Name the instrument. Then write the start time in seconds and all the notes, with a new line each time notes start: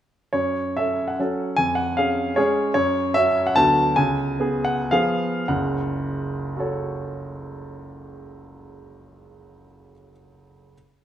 grand piano
0.33 F#2 C#5
0.77 C#4 A4 E5
1.08 F#5
1.19 F#3 C#4 A4
1.56 F2 G#5
1.75 F#5
1.97 C#4 G#4 F5
2.36 G#3 C#4 G#4 C#5
2.74 F#2 C#5
3.14 C#4 F#4 E5
3.47 F#5
3.56 D2 F#3 B3 F#4 A5
3.96 C#2 G#5
4.40 B3 G#4
4.65 F#5
4.91 F3 B3 G#4 F5
5.48 F#1 C#2 F#5
6.56 F#4 A4 C#5